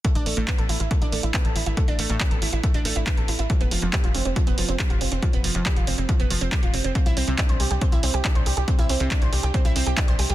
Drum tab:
HH |xxoxxxoxxxoxxxox|xxoxxxoxxxoxxxox|xxoxxxoxxxoxxxox|xxoxxxoxxxoxxxox|
CP |----x-------x---|----x-------x---|----x-------x---|----x-------x---|
BD |o---o---o---o---|o---o---o---o---|o---o---o---o---|o---o---o---o---|

HH |xxoxxxoxxxoxxxox|xxoxxxoxxxoxxxox|
CP |----x-------x---|----x-------x---|
BD |o---o---o---o---|o---o---o---o---|